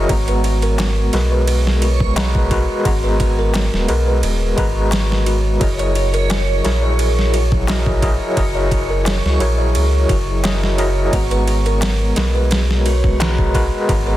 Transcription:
Already playing: F#3 E4 G#4 A#4 C#5 D#5
0.08 G#1 G#3 B3 F#4 A#5, kick, ride
0.28 B4, ride
0.44 F#4, ride
0.62 A#4, ride
0.78 snare, ride, darbuka tek
1.13 B1 G#3 F#4 A#4 B4, snare, ride
1.32 B4
1.47 G#4, ride
1.67 snare
1.82 F#4, ride
2.00 kick
2.16 G#3 F#4 B4 A#5, snare, ride, darbuka tek
2.35 kick
2.51 G#3 F#4 A#4 B4, kick, ride
2.84 G#1 G#3 B3 F#4 A#5, kick, ride
3.04 B4
3.20 F#4, kick, ride
3.39 A#4
3.54 snare, ride, darbuka tek
3.73 D#1, snare
3.88 B1 G#3 F#4 A#4 B4, ride
4.07 B4
4.23 D#1 G#4, ride
4.57 G#1 G#3 F#4 B4 A#5, kick, ride
4.91 F#4, snare, ride, darbuka tek
5.12 snare
5.26 F#4, ride
5.60 F#1 F#3 E4 F#4 G#4 A#4 D#5, kick, ride
5.79 C#5, ride
5.95 F#4, ride
6.14 A#4, ride
6.30 snare, ride, darbuka tek
6.64 A#1 F#3 E4 G#4 A#4 C#5, snare, ride
6.83 C#5
6.99 G#4, ride
7.19 snare
7.34 F#4, ride
7.52 kick
7.67 F#3 E4 F#4 G#4 A#4 D#5, snare, ride, darbuka tek
7.86 kick
8.02 F#3 E4 F#4 G#4 A#4 D#5, kick, ride
8.36 F#1 F#3 E4 F#4 G#4 A#4 D#5, kick, ride
8.55 C#5
8.71 F#4, kick, ride
8.90 A#4
9.05 snare, ride, darbuka tek
9.25 C#2, snare
9.40 A#1 F#3 E4 G#4 A#4 C#5, ride
9.59 C#5
9.75 C#2 G#4, ride
10.09 F#1 F#4, kick, ride
10.44 F#3 E4 F#4 G#4 A#4 D#5, snare, ride, darbuka tek
10.63 snare
10.78 F#3 E4 F#4 G#4 A#4 D#5, ride
11.12 G#1 G#3 B3 F#4 A#5, kick, ride
11.31 B4, ride
11.47 F#4, ride
11.66 A#4, ride
11.81 snare, ride, darbuka tek
12.16 B1 G#3 F#4 A#4 B4, snare, ride
12.35 B4
12.51 G#4, snare, ride
12.71 snare
12.86 F#4, ride
13.04 kick
13.20 G#3 F#4 B4 A#5, snare, ride, darbuka tek
13.38 kick
13.54 G#3 F#4 A#4 B4, kick, ride
13.88 G#1 G#3 B3 F#4 A#5, kick, ride
14.07 B4

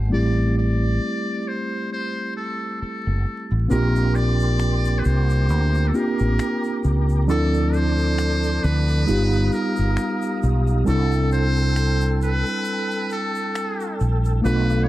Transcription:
Already playing: G#1
0.09 A1 G3 A3 C4 E4
0.13 G4 D5
0.58 D5
1.48 C5
1.93 C5
2.37 A4
2.82 A4, muted fretless electric bass stroke
3.07 F#1
3.51 A1
3.68 A#1 A#3 C4 D4 F4 A#4 G5 C6 D6, shaker
3.72 G4
3.95 shaker
4.15 D5, shaker
4.40 shaker
4.60 finger snap, shaker
4.85 shaker
4.99 B4
5.05 C2 C5, shaker
5.29 shaker
5.49 D2 A#5, shaker
5.75 shaker
5.88 A4
5.93 A#3 C4 D4 F4 G4 A#4, shaker
6.19 A1, shaker
6.39 finger snap, shaker
6.64 shaker
6.84 C#2, shaker
7.09 shaker
7.27 D2 F3 C4 D4 E4 A4 D5 A5 D6, shaker
7.31 A4
7.54 shaker
7.74 C5, shaker
7.98 shaker
8.18 finger snap, shaker
8.43 shaker
8.63 D2 B4, shaker
8.88 shaker
9.06 G1 G3 B3 D#4 F4 G4 F5 A#5 D#6, shaker
9.33 shaker
9.52 A#4, shaker
9.76 G1, shaker
9.97 finger snap, shaker
10.22 shaker
10.43 B1, shaker
10.67 shaker
10.85 C2 G3 C4 D4 E4 A4 G5 A5 E6, shaker
11.12 shaker
11.32 C5, shaker
11.56 shaker
11.76 finger snap, shaker
12.01 shaker
12.22 B4, shaker
12.46 shaker
12.65 shaker
12.91 shaker
13.10 A4, shaker
13.35 shaker
13.55 finger snap, shaker
13.80 shaker
14.00 A#1, shaker
14.25 shaker
14.42 B1 A3 B3 D4 F4 A4 B4 F5 B5 D6, shaker
14.46 A4
14.70 shaker
14.83 C#5

